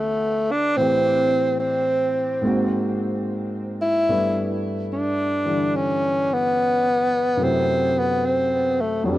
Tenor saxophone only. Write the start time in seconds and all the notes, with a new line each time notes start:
Already playing: A3
0.51 D4
0.77 C4
1.60 C4
3.82 E4
4.93 D4
5.76 C#4
6.34 B3
7.43 C4
7.99 B3
8.25 C4
8.81 A3
9.05 G3